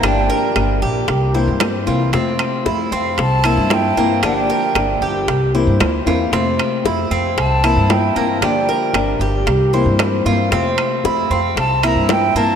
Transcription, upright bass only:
X:1
M:4/4
L:1/16
Q:1/4=114
K:Cmix
V:1 name="Upright bass" clef=bass
G,,,2 z2 G,,,2 B,,,2 C,,3 G,,3 C,,2 | F,,2 z2 F,,2 F,,2 C,,3 G,,3 G,,2 | G,,,2 z2 G,,,2 G,,,2 C,,3 G,, D,,2 E,,2 | F,,2 z2 F,,2 F,,2 C,,3 G,,3 G,,2 |
G,,,2 z2 G,,,2 G,,,2 C,,3 G,,3 G,,2 | F,,2 z2 F,,2 F,,2 C,,3 G,,3 G,,2 |]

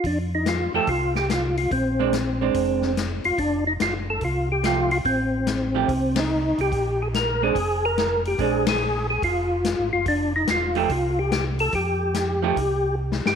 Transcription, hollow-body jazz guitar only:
X:1
M:4/4
L:1/8
Q:"Swing" 1/4=144
K:Bb
V:1 name="Hollow-body jazz guitar"
z3 [F,A,EG] z4 | z [_A,CD] z [A,CD]3 z2 | z6 [F,A,EG] z | z3 [F,A,EG] z4 |
z3 [_A,CD] z4 | [_A,CD] z6 z | z3 [F,A,EG] z4 | z3 [F,A,EG] z4 |]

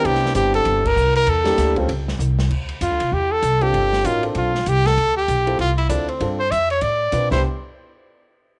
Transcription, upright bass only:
X:1
M:4/4
L:1/8
Q:"Swing" 1/4=195
K:Ddor
V:1 name="Upright bass" clef=bass
C,,2 G,,,2 G,,,2 C,,2 | E,,2 D,,2 _D,,2 C,,2 | D,,2 (3F,, D,, C,, E,,2 C,,2 | G,,,2 A,,,2 B,,,2 C,,2 |
D,,2 B,,,2 C,,2 D,,2 | G,,2 F,,2 A,,2 B,, C,, | z8 |]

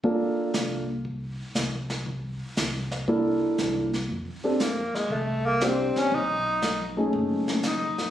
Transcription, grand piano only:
X:1
M:4/4
L:1/8
Q:"Swing" 1/4=118
K:Cmix
V:1 name="Grand piano"
[B,DFA]3 z4 z | z4 [B,DEA]3 z | z [CDGA] z4 [CDGc]2 | z3 [A,^C^D^G]3 z2 |]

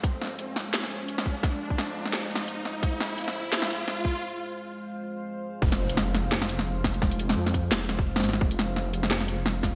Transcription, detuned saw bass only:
X:1
M:4/4
L:1/8
Q:"Swing 16ths" 1/4=172
K:Fm
V:1 name="Detuned saw bass" clef=bass
F,,,6 F,,,2- | F,,,2 F,,2 F,,,3 A,,, | F,,,6 F,,,2 | z8 |
F,,,6 F,,,2- | F,,,2 F,,2 F,,,3 A,,, | F,,,6 F,,,2 |]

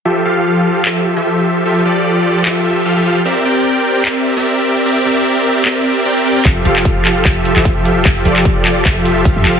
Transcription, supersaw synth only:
X:1
M:4/4
L:1/16
Q:"Swing 16ths" 1/4=150
K:F
V:1 name="Supersaw synth"
[F,FGAe]2 [F,FGAf]6 [F,FGAe]3 [F,FGAe]4- [F,FGAe] | [F,FGAe]2 [F,FGAd]6 [F,FGAe]4 [F,FGAf] [F,FGAe] [F,FGAf] z | [CGBde]2 [CGBdg]6 [CGBde]3 [CGBde]4- [CGBde] | [CGBde]2 [CGBde]6 [CGBde]4 [CGBdg] [CGBde] [CGBdg] z |
[F,FGAe]2 [F,FGAf]6 [F,FGAe]3 [F,FGAe]4- [F,FGAe] | [F,FGAe]2 [F,FGAd]6 [F,FGAe]4 [F,FGAf] [F,FGAe] [F,FGAf] z |]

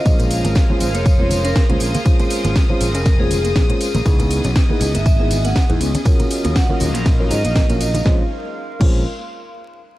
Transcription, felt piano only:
X:1
M:4/4
L:1/16
Q:"Swing 16ths" 1/4=120
K:Bbm
V:1 name="Felt piano"
[A,CDF]4- [A,CDF] [A,CDF] z3 [A,CDF] z3 [A,CDF] z2 | [A,CDF]4- [A,CDF] [A,CDF] z3 [A,CDF] z3 [A,CDF] z2 | [_CE_FA]4- [CEFA] [CEFA] z3 [CEFA] z3 [CEFA] z2 | [DFGB]4- [DFGB] [DFGB] z3 [DFGB] z3 [DFGB] z2 |
[A,CDF] z4 z [A,CDF]2 z8 |]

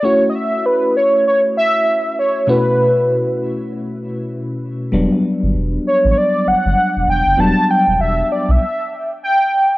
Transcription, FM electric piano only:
X:1
M:4/4
L:1/8
Q:"Swing 16ths" 1/4=98
K:Edor
V:1 name="FM electric piano"
[A,CEF]8 | [B,,A,CEF]8 | [F,G,B,D]8 | [F,G,B,D]4 z4 |]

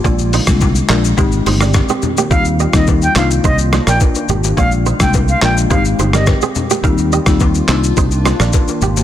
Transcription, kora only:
X:1
M:4/4
L:1/16
Q:1/4=106
K:Eb
V:1 name="Kora"
[Fd] z [Ec] z3 [DB] z [Ec] z [Ec] [DB] z [CA] z [B,G] | [Bf] z [Ge] z3 [Ec] z [Ec] z [Ec] [DB] z2 [B,G] z | [Fd] z [Ec] z3 [DB] z [Ec] z [Ec] [DB] z [CA] z [B,G] | [Bf] z [Ge] z3 [Ec] z [Ec] z [Ec] [DB] z2 [B,G] z |]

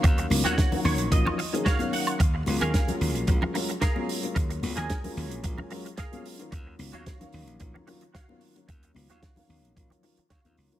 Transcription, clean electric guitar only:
X:1
M:4/4
L:1/16
Q:"Swing 16ths" 1/4=111
K:Gb
V:1 name="Clean electric guitar"
z3 [Gdg]3 d2 e4 [Gdf]2 g2 | z3 [ABf]3 z6 [ABf]2 z2 | z3 [ABa]3 z6 [ABf]2 z2 | z3 [Gdf]3 z6 [Gdf]2 z2 |
z3 [Gdf]3 z6 [Gdf]2 z2 |]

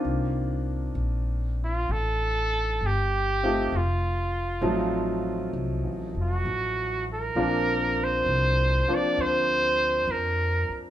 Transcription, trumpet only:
X:1
M:4/4
L:1/8
Q:"Swing" 1/4=66
K:Cdor
V:1 name="Trumpet"
z3 F A2 G2 | F4 z _G2 B- | B c2 d c2 B z |]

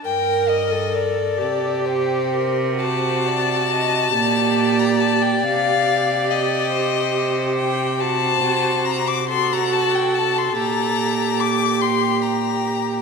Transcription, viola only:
X:1
M:6/8
L:1/16
Q:3/8=47
K:Gm
V:1 name="Viola"
B3 A3 G6 | _G6 =G6 | G12 | ^F6 F6 |
G12 |]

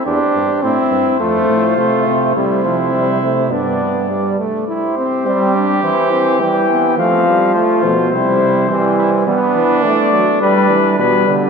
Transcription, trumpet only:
X:1
M:4/4
L:1/8
Q:1/4=104
K:C
V:1 name="Trumpet"
G2 E2 F4 | E4 D3 z | G8 | C2 F2 E2 C E |
D4 D3 z |]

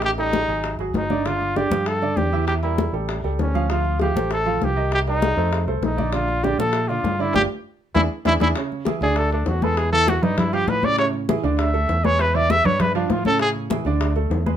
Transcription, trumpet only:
X:1
M:4/4
L:1/8
Q:1/4=198
K:Gdor
V:1 name="Trumpet"
G _E4 z E2 | F2 G2 A2 G2 | G E2 z3 ^C2 | F2 G2 A2 G2 |
G _E4 z E2 | F2 G A2 F2 E | G z3 E z E E | [K:A] z3 G A D F A |
G A F ^D E =G B =d | c z3 e3 c | B d e c B D =F A | G z6 z |]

